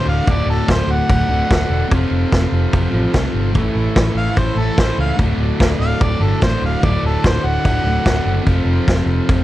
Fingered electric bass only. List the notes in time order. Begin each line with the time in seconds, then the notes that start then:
0.06 D1
0.28 D1
0.46 D1
0.68 D1
0.87 D1
1.10 D1
1.28 D1
1.51 D1
1.70 E1
1.92 F1
2.11 F1
2.32 F1
2.52 F1
2.73 F1
2.93 A1
3.14 C2
3.34 G1
3.55 A1
3.75 A1
3.96 A1
4.15 A1
4.37 A1
4.56 A1
4.78 A1
4.98 C#2
5.19 D1
5.38 D1
5.60 D1
5.79 D1
6.01 D1
6.20 G1
6.42 A1
6.62 D1
6.83 D1
7.03 D1
7.24 D1
7.44 D1
7.65 D1
7.84 D1
8.06 D1
8.25 F#1
8.46 F1
8.65 F1
8.88 F1
9.06 F1
9.29 F1